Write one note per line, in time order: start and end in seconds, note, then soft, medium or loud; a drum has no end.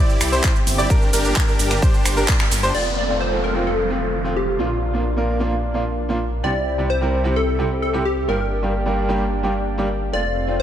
0.00 0.88 C3 medium
0.00 0.88 C4 medium
0.00 0.30 E4 medium
0.00 0.88 E4 medium
0.00 0.30 G4 medium
0.00 2.71 G4 medium
0.00 0.30 D5 loud
0.09 shaker soft
0.21 0.40 C2 loud
0.21 finger snap medium
0.21 open hi-hat loud
0.21 ride medium
0.21 shaker medium
0.32 0.51 E4 loud
0.32 0.50 G4 medium
0.32 0.50 C5 loud
0.32 shaker soft
0.44 kick loud
0.44 clap loud
0.44 shaker soft
0.56 shaker soft
0.67 0.86 G1 medium
0.67 open hi-hat medium
0.67 ride medium
0.67 shaker medium
0.78 0.87 E4 loud
0.78 0.87 G4 medium
0.78 0.87 D5 loud
0.78 shaker soft
0.90 2.73 A#3 medium
0.90 2.73 D4 medium
0.90 1.10 D4 medium
0.90 1.10 G4 medium
0.90 1.10 A#4 loud
0.90 kick loud
0.90 shaker soft
1.02 shaker soft
1.13 1.32 G1 loud
1.13 1.45 D4 medium
1.13 1.45 G4 medium
1.13 1.45 A#4 loud
1.13 open hi-hat loud
1.13 ride medium
1.13 shaker medium
1.25 shaker soft
1.36 kick loud
1.36 clap loud
1.36 shaker soft
1.48 1.80 D4 medium
1.48 1.80 G4 medium
1.48 1.80 A#4 medium
1.48 shaker soft
1.59 1.79 G1 loud
1.59 open hi-hat medium
1.59 ride medium
1.59 shaker medium
1.71 finger snap medium
1.71 shaker soft
1.82 2.14 D4 medium
1.82 2.14 G4 medium
1.82 2.14 C5 loud
1.82 kick loud
1.82 shaker soft
1.94 shaker soft
2.05 2.25 G1 loud
2.05 finger snap medium
2.05 open hi-hat loud
2.05 ride medium
2.05 shaker medium
2.17 2.35 D4 loud
2.17 2.35 G4 medium
2.17 2.35 A#4 loud
2.17 shaker soft
2.28 kick loud
2.28 clap loud
2.28 shaker soft
2.40 finger snap medium
2.40 shaker soft
2.52 2.71 G1 medium
2.52 open hi-hat medium
2.52 ride medium
2.52 shaker medium
2.63 2.72 D4 loud
2.63 2.72 G4 medium
2.63 2.72 C5 loud
2.63 shaker soft
2.74 4.57 F1 medium
2.74 2.82 F3 medium
2.74 2.82 A3 medium
2.74 4.57 A3 medium
2.74 4.57 C4 medium
2.74 2.82 C4 medium
2.74 6.40 F4 medium
2.74 2.82 F4 medium
2.74 2.96 D5 loud
2.74 crash medium
2.74 downlifter medium
2.98 3.22 D5 loud
3.09 3.16 F3 medium
3.09 3.16 A3 medium
3.09 3.17 C4 medium
3.09 3.17 F4 medium
3.21 3.45 C5 loud
3.32 3.52 F3 medium
3.32 3.53 A3 medium
3.32 3.53 C4 medium
3.32 3.53 A4 medium
3.44 3.66 A#4 medium
3.55 3.67 F3 medium
3.55 3.67 A3 medium
3.55 3.67 C4 medium
3.55 3.67 F4 medium
3.67 4.38 A4 loud
3.90 3.97 F3 medium
3.90 3.97 A3 medium
3.90 3.97 C4 medium
3.90 3.98 F4 medium
4.24 4.32 F3 medium
4.24 4.32 A3 medium
4.24 4.32 C4 medium
4.24 4.32 F4 loud
4.36 4.59 G4 medium
4.59 6.42 A#1 medium
4.59 4.66 A#2 medium
4.59 4.66 F3 medium
4.59 6.42 A#3 medium
4.59 4.67 A#3 medium
4.59 6.42 D4 medium
4.59 4.67 D4 medium
4.59 5.02 F4 medium
4.59 4.67 F4 medium
4.93 5.01 A#2 medium
4.93 5.01 F3 medium
4.93 5.01 A#3 medium
4.93 5.01 D4 medium
4.93 5.01 F4 medium
5.16 5.37 A#2 medium
5.16 5.37 F3 medium
5.16 5.37 A#3 medium
5.16 5.37 D4 medium
5.16 5.38 A#4 medium
5.39 5.51 A#2 medium
5.39 5.51 F3 medium
5.39 5.52 A#3 medium
5.39 5.52 D4 medium
5.39 5.52 F4 loud
5.74 5.82 A#2 medium
5.74 5.82 F3 medium
5.74 5.82 A#3 medium
5.74 5.82 D4 medium
5.74 5.82 F4 medium
6.09 6.16 A#2 medium
6.09 6.16 F3 medium
6.09 6.17 A#3 medium
6.09 6.17 D4 medium
6.09 6.17 F4 loud
6.43 8.26 C2 medium
6.43 6.51 C3 medium
6.43 8.27 C3 medium
6.43 6.51 G3 medium
6.43 8.27 C4 medium
6.43 6.51 C4 medium
6.43 8.27 E4 medium
6.43 6.51 E4 medium
6.43 10.09 G4 medium
6.43 6.51 G4 medium
6.43 6.91 D5 loud
6.78 6.85 C3 medium
6.78 6.86 G3 medium
6.78 6.86 C4 medium
6.78 6.86 E4 medium
6.78 6.86 G4 medium
6.90 7.38 C5 loud
7.01 7.22 C3 medium
7.01 7.22 G3 medium
7.01 7.22 C4 medium
7.01 7.22 E4 medium
7.01 7.22 A#4 medium
7.24 7.36 C3 medium
7.24 7.36 G3 medium
7.24 7.36 C4 medium
7.24 7.36 E4 medium
7.24 7.36 G4 loud
7.36 7.82 A4 loud
7.59 7.66 C3 medium
7.59 7.66 G3 medium
7.59 7.66 C4 medium
7.59 7.67 E4 medium
7.59 7.67 G4 medium
7.82 8.07 A4 medium
7.93 8.01 C3 medium
7.93 8.01 G3 medium
7.93 8.01 C4 medium
7.93 8.01 E4 medium
7.93 8.01 G4 loud
8.05 8.30 G4 medium
8.28 10.11 G1 medium
8.28 8.35 G2 medium
8.28 8.36 G3 medium
8.28 8.36 A#3 medium
8.28 10.11 A#3 medium
8.28 10.11 D4 medium
8.28 8.36 D4 medium
8.28 8.36 G4 medium
8.28 8.75 A#4 medium
8.62 8.70 G2 medium
8.62 8.70 G3 medium
8.62 8.70 A#3 medium
8.62 8.70 D4 medium
8.62 8.71 G4 medium
8.86 9.06 G2 medium
8.86 9.06 G3 medium
8.86 9.07 A#3 medium
8.86 9.07 D4 medium
8.86 9.07 A#4 medium
9.08 9.20 G2 medium
9.08 9.21 G3 medium
9.08 9.21 A#3 medium
9.08 9.21 D4 medium
9.08 9.21 G4 loud
9.43 9.51 G2 medium
9.43 9.51 G3 medium
9.43 9.51 A#3 medium
9.43 9.51 D4 medium
9.43 9.51 G4 medium
9.78 9.85 G2 medium
9.78 9.85 G3 medium
9.78 9.86 A#3 medium
9.78 9.86 D4 medium
9.78 9.86 G4 medium
10.12 10.62 F1 medium
10.12 10.20 F3 medium
10.12 10.20 A3 medium
10.12 10.62 A3 medium
10.12 10.62 C4 medium
10.12 10.20 C4 medium
10.12 10.62 F4 medium
10.12 10.21 F4 medium
10.12 10.61 D5 loud
10.47 10.55 F3 medium
10.47 10.55 A3 medium
10.47 10.55 C4 medium
10.47 10.55 F4 medium